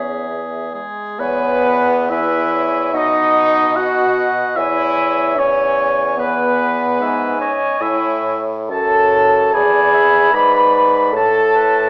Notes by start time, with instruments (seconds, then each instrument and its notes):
Already playing: bassoon E2, clarinet B3, french horn C#4, oboe G#4, flute E5
0.28 french horn B3
0.74 french horn G#3, oboe G#4
1.19 bassoon E2, french horn B3, oboe B4, clarinet C#5, flute G#5
1.66 clarinet B4
2.10 french horn E4, clarinet B4, oboe E5, flute G#5
2.53 clarinet C#5
2.93 bassoon B2, french horn D#4, clarinet D#5, oboe D#5, flute F#5
3.35 clarinet D#5
3.76 french horn F#4, oboe F#5, flute F#5
4.56 bassoon E2, french horn E4, clarinet C#5, oboe E5, flute G#5
5.37 french horn C#4, oboe C#5, flute G#5
6.17 french horn B3, oboe B4, clarinet B4, flute G#5
7.00 bassoon G#2, clarinet E5, flute G#5
7.39 french horn C#4, oboe C#5, clarinet D#5
7.81 bassoon A2, french horn E4, clarinet C#5, oboe E5
8.69 bassoon F#2, french horn A4, clarinet C#5, flute A5, oboe A5
9.53 bassoon E2, french horn G#4, clarinet D5, oboe G#5, flute B5
9.94 clarinet E5
10.32 bassoon G#2, french horn B4, clarinet D5, oboe B5
11.13 bassoon A2, french horn A4, clarinet C#5, flute A5, oboe A5
11.56 clarinet B4